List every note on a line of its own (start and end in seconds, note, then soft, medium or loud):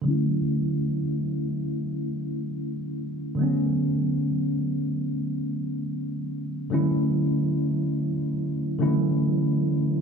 0.02 3.33 D3 medium
0.02 3.34 F#3 medium
0.06 3.35 A3 medium
0.06 3.36 C#4 medium
0.10 3.37 E4 medium
3.35 6.66 D3 medium
3.35 6.67 F#3 medium
3.39 6.68 A3 medium
3.39 6.69 B3 medium
3.43 6.70 C#4 medium
6.70 8.02 D3 medium
6.70 8.03 F#3 medium
6.70 8.03 A3 medium
6.70 8.04 C#4 medium
6.74 8.04 E4 medium
8.79 9.78 D3 medium
8.79 8.86 E3 medium
8.79 9.79 A3 medium
8.79 9.79 C#4 medium
8.83 9.82 F#3 medium
8.83 9.80 E4 medium